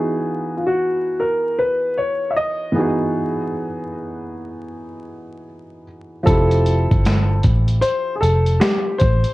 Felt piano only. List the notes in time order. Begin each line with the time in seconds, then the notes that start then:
Already playing: E3 B3 D#4 F#4 G#4
2.72 E3 B3
2.76 D#4 F#4
2.81 G#4
6.23 F3 C4
6.28 E4 G4
6.32 A4